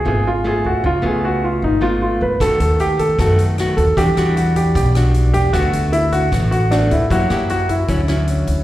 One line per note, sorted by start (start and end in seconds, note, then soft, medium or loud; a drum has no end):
0.05 0.60 G#1 medium
0.05 0.30 A3 soft
0.05 0.31 B3 soft
0.05 0.31 F4 medium
0.05 0.27 G#4 medium
0.27 0.44 F4 medium
0.44 0.83 A3 soft
0.44 0.83 B3 soft
0.44 0.84 F4 medium
0.44 0.66 G#4 medium
0.64 0.82 C#2 medium
0.64 0.85 F#4 medium
0.84 1.02 C#2 medium
0.84 1.60 C#3 medium
0.84 1.05 F4 medium
1.02 1.58 C#2 medium
1.02 1.78 A3 medium
1.02 1.78 B3 medium
1.02 1.79 F4 medium
1.02 1.25 G#4 medium
1.25 1.44 F#4 medium
1.44 1.63 F4 medium
1.62 2.17 G#1 medium
1.62 1.83 D#4 medium
1.81 2.37 A3 soft
1.81 2.37 B3 medium
1.81 2.37 F4 medium
1.81 2.00 F4 medium
2.02 2.22 F4 medium
2.21 2.39 C#2 medium
2.21 2.42 B4 medium
2.40 2.59 D#2 medium
2.40 3.17 D#3 medium
2.40 3.16 A3 soft
2.40 3.16 B3 medium
2.40 3.16 F#4 medium
2.40 2.59 A4 medium
2.40 kick medium
2.40 cross-stick soft
2.40 closed hi-hat soft
2.60 3.15 D#2 medium
2.60 2.80 A4 medium
2.60 closed hi-hat soft
2.80 3.00 G4 medium
2.80 closed hi-hat soft
2.99 3.18 A4 medium
2.99 kick soft
2.99 closed hi-hat soft
3.19 3.73 F#2 medium
3.19 3.96 D#3 soft
3.19 3.55 A3 soft
3.19 3.55 B3 soft
3.19 3.55 F#4 soft
3.19 3.37 A4 medium
3.19 kick medium
3.19 cross-stick medium
3.19 closed hi-hat soft
3.39 closed hi-hat soft
3.58 3.84 A3 soft
3.58 3.84 B3 medium
3.58 3.84 F#4 medium
3.58 cross-stick soft
3.58 closed hi-hat soft
3.77 3.96 D#2 medium
3.77 3.97 A4 medium
3.77 kick soft
3.77 closed hi-hat soft
3.97 4.15 E2 medium
3.97 4.74 E3 medium
3.97 4.09 G3 medium
3.97 4.09 D4 medium
3.97 4.09 F#4 medium
3.97 4.37 G4 medium
3.97 kick soft
3.97 closed hi-hat medium
4.16 4.71 E2 medium
4.16 4.92 G3 medium
4.16 4.92 D4 medium
4.16 4.93 F#4 medium
4.16 cross-stick soft
4.16 closed hi-hat soft
4.36 4.56 F#4 medium
4.36 closed hi-hat soft
4.56 4.74 G4 medium
4.56 kick soft
4.56 closed hi-hat soft
4.75 5.30 B1 medium
4.75 5.52 B2 soft
4.75 4.94 G4 medium
4.75 kick medium
4.75 closed hi-hat medium
4.95 5.51 G3 medium
4.95 5.51 D4 medium
4.95 5.51 F#4 medium
4.95 cross-stick medium
4.95 closed hi-hat soft
5.14 closed hi-hat soft
5.34 5.52 E2 medium
5.34 5.54 G4 medium
5.34 kick soft
5.34 closed hi-hat soft
5.53 5.72 D2 medium
5.53 6.31 D3 medium
5.53 6.29 A3 medium
5.53 6.29 B3 medium
5.53 5.90 F#4 medium
5.53 6.29 F#4 medium
5.53 kick medium
5.53 cross-stick soft
5.53 closed hi-hat medium
5.73 6.28 D2 medium
5.73 closed hi-hat soft
5.93 6.11 E4 medium
5.93 closed hi-hat soft
6.12 6.50 F#4 medium
6.12 kick soft
6.12 closed hi-hat soft
6.31 6.87 A1 medium
6.31 7.08 A2 soft
6.31 6.57 A3 soft
6.31 6.57 B3 soft
6.31 6.58 F#4 soft
6.31 kick medium
6.31 cross-stick medium
6.31 closed hi-hat medium
6.51 6.72 F#4 medium
6.51 closed hi-hat soft
6.71 7.09 A3 soft
6.71 7.09 B3 medium
6.71 6.91 D4 medium
6.71 7.09 F#4 medium
6.71 cross-stick soft
6.71 closed hi-hat soft
6.91 7.09 D2 medium
6.91 7.11 E4 medium
6.91 kick soft
6.91 closed hi-hat soft
7.10 7.29 F#2 medium
7.10 7.87 F#3 medium
7.10 7.27 A#3 medium
7.10 7.27 E4 medium
7.10 7.49 F#4 medium
7.10 7.27 G4 medium
7.10 kick medium
7.10 closed hi-hat medium
7.29 7.85 F#2 medium
7.29 7.87 A#3 medium
7.29 7.87 E4 medium
7.29 7.88 G4 medium
7.29 cross-stick medium
7.29 closed hi-hat soft
7.49 7.70 F#4 medium
7.49 closed hi-hat soft
7.69 8.44 E4 medium
7.69 kick soft
7.69 closed hi-hat soft
7.88 8.44 D2 medium
7.88 8.64 D3 soft
7.88 8.00 F#3 soft
7.88 8.00 C#4 soft
7.88 8.01 E4 medium
7.88 kick medium
7.88 closed hi-hat soft
8.08 8.64 F#3 medium
8.08 8.64 C#4 soft
8.08 8.64 E4 medium
8.08 cross-stick medium
8.08 closed hi-hat soft
8.28 closed hi-hat soft
8.47 8.64 D2 medium
8.47 kick soft
8.47 closed hi-hat soft